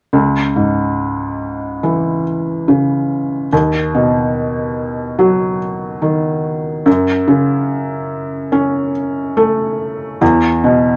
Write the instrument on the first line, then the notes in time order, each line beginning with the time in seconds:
felt piano
0.13 C#2
0.56 G#2
1.83 E3
2.68 C#3
3.52 D#2
3.94 B2
5.19 F#3
6.02 D#3
6.86 F#2
7.28 C#3
8.52 C#4
9.37 A3
10.21 E2
10.64 B2